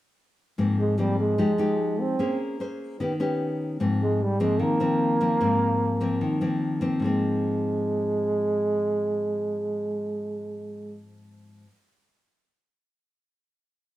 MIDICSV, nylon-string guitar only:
0, 0, Header, 1, 2, 480
1, 0, Start_track
1, 0, Key_signature, -4, "major"
1, 0, Tempo, 401338
1, 698, Time_signature, 4, 2, 24, 8
1, 16700, End_track
2, 0, Start_track
2, 0, Title_t, "Nylon-string guitar"
2, 0, Program_c, 0, 24
2, 694, Note_on_c, 0, 44, 64
2, 699, Note_on_c, 0, 53, 54
2, 701, Note_on_c, 0, 58, 53
2, 707, Note_on_c, 0, 60, 54
2, 1138, Note_off_c, 0, 53, 0
2, 1141, Note_off_c, 0, 58, 0
2, 1143, Note_off_c, 0, 60, 0
2, 1168, Note_on_c, 0, 53, 56
2, 1175, Note_on_c, 0, 58, 53
2, 1184, Note_on_c, 0, 60, 58
2, 1633, Note_off_c, 0, 44, 0
2, 1633, Note_off_c, 0, 53, 0
2, 1638, Note_off_c, 0, 58, 0
2, 1639, Note_off_c, 0, 60, 0
2, 1653, Note_on_c, 0, 53, 64
2, 1656, Note_on_c, 0, 56, 56
2, 1659, Note_on_c, 0, 63, 53
2, 1667, Note_on_c, 0, 67, 58
2, 1797, Note_off_c, 0, 56, 0
2, 1800, Note_off_c, 0, 63, 0
2, 1802, Note_off_c, 0, 67, 0
2, 1893, Note_on_c, 0, 56, 62
2, 1901, Note_on_c, 0, 63, 56
2, 1906, Note_on_c, 0, 67, 61
2, 2578, Note_off_c, 0, 56, 0
2, 2580, Note_off_c, 0, 63, 0
2, 2583, Note_off_c, 0, 67, 0
2, 2592, Note_off_c, 0, 53, 0
2, 2620, Note_on_c, 0, 58, 65
2, 2627, Note_on_c, 0, 61, 55
2, 2630, Note_on_c, 0, 68, 54
2, 2633, Note_on_c, 0, 72, 55
2, 3063, Note_off_c, 0, 61, 0
2, 3066, Note_off_c, 0, 68, 0
2, 3067, Note_off_c, 0, 72, 0
2, 3109, Note_on_c, 0, 61, 54
2, 3116, Note_on_c, 0, 68, 52
2, 3122, Note_on_c, 0, 72, 59
2, 3557, Note_off_c, 0, 58, 0
2, 3565, Note_off_c, 0, 61, 0
2, 3569, Note_off_c, 0, 68, 0
2, 3571, Note_off_c, 0, 72, 0
2, 3588, Note_on_c, 0, 51, 71
2, 3591, Note_on_c, 0, 59, 52
2, 3596, Note_on_c, 0, 61, 54
2, 3601, Note_on_c, 0, 67, 60
2, 3726, Note_off_c, 0, 59, 0
2, 3729, Note_off_c, 0, 61, 0
2, 3731, Note_off_c, 0, 67, 0
2, 3824, Note_on_c, 0, 59, 58
2, 3829, Note_on_c, 0, 61, 61
2, 3835, Note_on_c, 0, 67, 65
2, 4505, Note_off_c, 0, 59, 0
2, 4506, Note_off_c, 0, 61, 0
2, 4510, Note_off_c, 0, 67, 0
2, 4522, Note_off_c, 0, 51, 0
2, 4544, Note_on_c, 0, 44, 69
2, 4550, Note_on_c, 0, 53, 52
2, 4551, Note_on_c, 0, 58, 51
2, 4557, Note_on_c, 0, 60, 59
2, 5022, Note_off_c, 0, 53, 0
2, 5025, Note_off_c, 0, 58, 0
2, 5026, Note_off_c, 0, 60, 0
2, 5261, Note_on_c, 0, 53, 60
2, 5266, Note_on_c, 0, 58, 67
2, 5271, Note_on_c, 0, 60, 67
2, 5481, Note_off_c, 0, 44, 0
2, 5495, Note_on_c, 0, 51, 69
2, 5705, Note_off_c, 0, 53, 0
2, 5707, Note_off_c, 0, 58, 0
2, 5710, Note_off_c, 0, 60, 0
2, 5742, Note_on_c, 0, 53, 57
2, 5749, Note_on_c, 0, 58, 57
2, 5751, Note_on_c, 0, 60, 68
2, 6186, Note_off_c, 0, 53, 0
2, 6187, Note_off_c, 0, 58, 0
2, 6190, Note_off_c, 0, 60, 0
2, 6226, Note_on_c, 0, 53, 60
2, 6232, Note_on_c, 0, 58, 57
2, 6237, Note_on_c, 0, 60, 62
2, 6428, Note_off_c, 0, 53, 0
2, 6431, Note_off_c, 0, 58, 0
2, 6433, Note_off_c, 0, 60, 0
2, 6438, Note_off_c, 0, 51, 0
2, 6465, Note_on_c, 0, 44, 64
2, 6465, Note_on_c, 0, 53, 54
2, 6469, Note_on_c, 0, 58, 50
2, 6474, Note_on_c, 0, 60, 56
2, 7148, Note_off_c, 0, 53, 0
2, 7151, Note_off_c, 0, 58, 0
2, 7151, Note_off_c, 0, 60, 0
2, 7182, Note_on_c, 0, 53, 57
2, 7189, Note_on_c, 0, 58, 60
2, 7195, Note_on_c, 0, 60, 67
2, 7404, Note_off_c, 0, 44, 0
2, 7427, Note_on_c, 0, 51, 70
2, 7627, Note_off_c, 0, 53, 0
2, 7631, Note_off_c, 0, 58, 0
2, 7632, Note_off_c, 0, 60, 0
2, 7667, Note_on_c, 0, 53, 59
2, 7675, Note_on_c, 0, 60, 64
2, 7676, Note_on_c, 0, 58, 57
2, 8110, Note_off_c, 0, 53, 0
2, 8113, Note_off_c, 0, 58, 0
2, 8114, Note_off_c, 0, 60, 0
2, 8143, Note_on_c, 0, 53, 63
2, 8153, Note_on_c, 0, 58, 59
2, 8154, Note_on_c, 0, 60, 60
2, 8365, Note_off_c, 0, 51, 0
2, 8366, Note_on_c, 0, 44, 53
2, 8382, Note_off_c, 0, 53, 0
2, 8397, Note_on_c, 0, 53, 57
2, 8407, Note_off_c, 0, 58, 0
2, 8422, Note_on_c, 0, 58, 60
2, 8424, Note_off_c, 0, 60, 0
2, 8439, Note_on_c, 0, 60, 69
2, 13919, Note_off_c, 0, 44, 0
2, 13950, Note_off_c, 0, 53, 0
2, 13975, Note_off_c, 0, 58, 0
2, 13992, Note_off_c, 0, 60, 0
2, 16700, End_track
0, 0, End_of_file